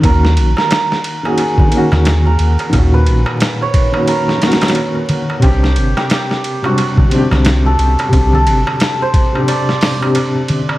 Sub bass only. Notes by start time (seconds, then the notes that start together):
0.04 D#2
0.37 A#1
1.92 D#2
2.40 D#2
2.73 D#2
3.07 A#1
5.43 C2
5.77 G1
7.32 C2
7.79 C2
8.12 C2
8.46 G1